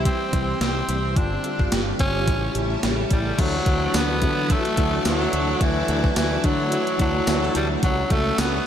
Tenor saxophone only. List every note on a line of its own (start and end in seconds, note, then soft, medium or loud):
0.06 0.57 C4 medium
0.61 1.19 C4 medium
1.17 1.73 D4 medium
2.00 2.79 C#4 loud
3.12 3.41 G3 loud
3.40 3.97 F#3 loud
3.95 4.52 B3 loud
4.51 5.06 A3 loud
5.07 5.63 F#3 loud
5.62 6.17 E3 loud
6.17 6.46 E3 loud
6.45 7.00 F#3 loud
7.00 7.52 F#3 loud
7.56 7.68 G3 loud
7.84 8.13 F#3 loud
8.12 8.41 A3 loud
8.39 8.67 B3 loud